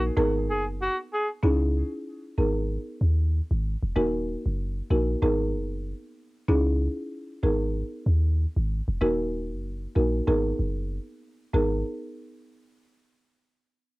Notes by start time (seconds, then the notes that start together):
Already playing: A#1 A#3 D#4 F#4 A#4
0.17 G#1 B3 D#4 G#4 A#4
0.49 F#1 G#4
0.82 F#4
1.13 G#4
1.43 C#2 C#4 D#4 E4 G#4
2.38 G#1 B3 D#4 G#4 A#4
3.01 D#2
3.51 G#1
3.83 E1
3.96 D#1 A#3 D#4 F#4 A#4
4.46 F#1
4.90 A#1 A#3 D#4 F#4 A#4
5.22 G#1 B3 D#4 G#4 A#4
5.54 F#1
6.48 C#2 C#4 D#4 E4 G#4
7.43 G#1 B3 D#4 G#4 A#4
8.06 D#2
8.56 G#1
8.88 E1
9.01 D#1 A#3 D#4 F#4 A#4
9.51 F#1
9.95 A#1 A#3 D#4 F#4 A#4
10.27 G#1 B3 D#4 G#4 A#4
10.59 F#1
11.53 G#1 B3 D#4 G#4 A#4